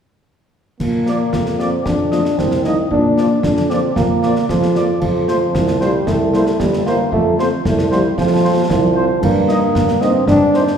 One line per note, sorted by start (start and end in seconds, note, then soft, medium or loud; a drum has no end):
0.80 1.24 A#2 medium
0.80 1.61 A#3 medium
0.80 concert bass drum medium
0.80 crash soft
1.06 1.16 F3 soft
1.06 1.16 A#3 soft
1.06 1.16 F4 medium
1.06 1.16 D5 soft
1.06 snare medium
1.33 1.77 F2 medium
1.33 concert bass drum medium
1.33 snare medium
1.46 snare soft
1.59 1.69 F3 soft
1.59 1.69 A#3 soft
1.59 1.88 C4 medium
1.59 1.69 F4 medium
1.59 1.68 D5 medium
1.59 snare soft
1.86 2.30 F2 medium
1.86 2.40 D4 medium
1.86 concert bass drum medium
1.86 snare medium
2.12 2.21 F3 soft
2.12 2.21 A3 medium
2.12 2.21 F4 medium
2.12 2.21 D#5 soft
2.12 snare medium
2.25 snare soft
2.38 2.82 C2 medium
2.38 2.64 C4 medium
2.38 concert bass drum medium
2.38 snare medium
2.51 snare medium
2.64 2.74 F3 medium
2.64 2.74 A3 soft
2.64 2.77 D#4 medium
2.64 2.74 F4 soft
2.64 2.74 D#5 soft
2.64 snare soft
2.91 3.35 A#2 medium
2.91 3.40 D4 medium
2.91 concert bass drum medium
3.17 3.27 F3 medium
3.17 3.27 A#3 soft
3.17 3.27 F4 medium
3.17 3.27 D5 soft
3.17 snare soft
3.43 3.87 F2 medium
3.43 3.72 D4 medium
3.43 concert bass drum medium
3.43 snare medium
3.57 snare medium
3.70 3.80 F3 medium
3.70 3.80 A#3 medium
3.70 3.95 C4 medium
3.70 3.80 F4 medium
3.70 3.79 D5 medium
3.70 snare soft
3.96 4.40 A#2 medium
3.96 4.45 A#3 medium
3.96 concert bass drum medium
3.96 snare medium
4.23 4.33 F3 medium
4.23 4.33 A#3 medium
4.23 4.33 F4 medium
4.23 4.32 D5 soft
4.23 snare soft
4.36 snare soft
4.49 4.93 F2 medium
4.49 4.98 F3 medium
4.49 concert bass drum medium
4.49 snare medium
4.63 snare medium
4.75 4.86 F3 medium
4.75 4.86 A#3 soft
4.75 4.85 F4 medium
4.75 4.85 D5 medium
4.75 snare medium
5.01 5.45 F2 medium
5.01 5.77 F3 medium
5.01 concert bass drum medium
5.01 crash soft
5.28 5.38 F3 medium
5.28 5.38 A3 medium
5.28 5.38 F4 medium
5.28 5.37 C5 medium
5.28 snare medium
5.54 5.98 C2 medium
5.54 concert bass drum medium
5.54 snare medium
5.67 snare medium
5.81 5.90 F3 medium
5.81 6.09 G3 medium
5.81 5.90 A3 medium
5.81 5.90 F4 medium
5.81 5.90 C5 medium
5.81 snare soft
6.06 6.50 C2 medium
6.06 6.61 A3 loud
6.06 concert bass drum medium
6.06 snare medium
6.34 6.43 G3 medium
6.34 6.43 A#3 medium
6.34 6.43 E4 medium
6.34 6.43 C5 soft
6.34 snare medium
6.47 snare medium
6.59 7.03 G1 medium
6.59 6.86 G3 medium
6.59 concert bass drum medium
6.59 snare medium
6.73 snare medium
6.86 6.95 G3 medium
6.86 6.95 A#3 medium
6.86 7.10 A#3 medium
6.86 6.95 E4 medium
6.86 6.96 C5 medium
6.86 snare soft
7.12 7.51 F2 medium
7.12 7.44 A3 medium
7.12 concert bass drum medium
7.38 7.48 F3 medium
7.38 7.48 C4 medium
7.38 7.48 F4 medium
7.38 7.48 C5 medium
7.38 snare medium
7.64 8.08 C2 medium
7.64 7.89 A3 medium
7.64 concert bass drum medium
7.64 snare medium
7.79 snare medium
7.91 8.01 F3 medium
7.91 8.03 G3 medium
7.91 8.01 C4 medium
7.91 8.01 F4 medium
7.91 8.00 C5 medium
7.91 snare soft
8.16 8.61 F2 medium
8.16 8.66 F3 medium
8.16 concert bass drum medium
8.16 snare medium
8.43 8.53 F3 medium
8.43 8.53 C4 medium
8.43 8.53 F4 medium
8.43 8.53 C5 medium
8.70 9.14 C2 medium
8.70 9.19 F3 medium
8.70 concert bass drum medium
8.70 snare medium
8.95 9.06 F3 medium
8.95 9.06 C4 medium
8.95 9.06 F4 medium
8.95 9.05 C5 medium
9.22 9.66 G2 medium
9.22 10.03 A#3 medium
9.22 concert bass drum medium
9.22 crash soft
9.48 9.58 A#3 medium
9.48 9.58 D#4 medium
9.48 9.58 D#5 medium
9.48 snare medium
9.74 10.18 G2 medium
9.74 concert bass drum medium
9.74 snare medium
9.88 snare medium
10.01 10.11 A#3 medium
10.01 10.28 C4 medium
10.01 10.11 D#4 medium
10.01 10.11 D#5 medium
10.01 snare soft
10.27 10.71 G2 medium
10.27 10.78 D4 loud
10.27 concert bass drum medium
10.27 snare medium
10.54 10.64 A#3 medium
10.54 10.64 C4 medium
10.54 10.64 D#4 medium
10.54 10.63 C5 medium
10.54 snare soft
10.67 snare soft